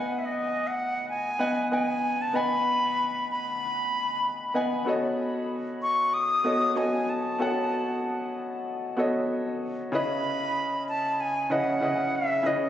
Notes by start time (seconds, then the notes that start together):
Already playing: B3 B4 D#5 F#5 G#5
0.19 E5
0.25 D#5
0.67 F#5
1.09 G#5
1.39 B3 B4 D#5 F#5 G#5
1.71 B3 B4 D#5 F#5 G#5
2.21 A5
2.33 B3 B4 D#5 F#5 G#5 B5
3.31 B5
4.54 B3 B4 D#5 F#5 G#5
4.85 B3 F#4 A4 C#5
4.89 D#5
5.82 C#6
6.14 D#6
6.44 B3 F#4 A4 C#5 D#5
6.75 B3 F#4 A4 C#5 D#5 G#5
7.09 A5
7.39 B3 F#4 A4 C#5 F#5
8.97 B3 F#4 A4 C#5 D#5
9.92 C#3 C#4 E4 B4 D#5 B5
10.89 A5
11.20 G#5
11.50 C#3 C#4 E4 B4 D#5 F#5
11.81 C#3 C#4 E4 B4 D#5
12.15 E5
12.43 C#3 C#4 E4 B4 D#5